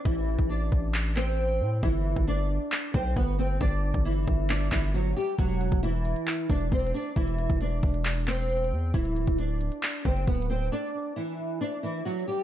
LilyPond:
<<
  \new Staff \with { instrumentName = "Nylon-string guitar" } { \time 4/4 \key d \mixolydian \tempo 4 = 135 <e e'>4 <d' d''>4. <c' c''>4. | <e e'>4 <d' d''>4. <c' c''>8 <b b'>8 <c' c''>8 | <d' d''>4 <e e'>4 <d' d''>8 <e e'>8 <fis fis'>8 <g g'>8 | <fis fis'>4 <e e'>4. <d' d''>8 <c' c''>8 <d' d''>8 |
<e e'>4 <d' d''>4. <c' c''>4. | <e e'>4 <d' d''>4. <c' c''>8 <b b'>8 <c' c''>8 | <d' d''>4 <e e'>4 <d' d''>8 <e e'>8 <fis fis'>8 <g g'>8 | }
  \new Staff \with { instrumentName = "808-style bass" } { \clef bass \time 4/4 \key d \mixolydian a,,8. a,,8. a,,2 a,8 | g,,8. g,,4 r8. b,,8 g,,4 | g,,8. g,,8. g,,4 g,,4 r8 | e,,8. e,,4 r8. e,,8 e,,8 r8 |
e,,8. e,,8. e,,2 e,8 | d,,8. d,,4 r8. fis,,8 d,,4 | r1 | }
  \new DrumStaff \with { instrumentName = "Drums" } \drummode { \time 4/4 bd8. bd16 r8 bd8 hc8 hc8 r4 | bd8. bd16 r4 hc8 bd8 bd4 | bd8. bd16 r8 bd8 hc8 <hc bd>8 r4 | <hh bd>16 hh16 hh16 <hh bd>16 hh8 hh16 hh16 <hc hh>16 hh16 <hh bd>16 hh16 \tuplet 3/2 { <hh bd>16 hh16 hh16 r16 r16 r16 } |
<hh bd>16 hh16 hh16 <hh bd>16 hh8 <hho bd>16 hh16 <hc hh>16 hh16 <hc hh>16 hh16 \tuplet 3/2 { hh16 hh16 hh16 r16 r16 r16 } | <hh bd>16 hh16 hh16 <hh bd>16 hh8 hh16 hh16 <hc hh>16 hh16 <hh bd>16 hh16 \tuplet 3/2 { <hh bd>16 hh16 hh16 r16 r16 r16 } | r4 r4 r4 r4 | }
>>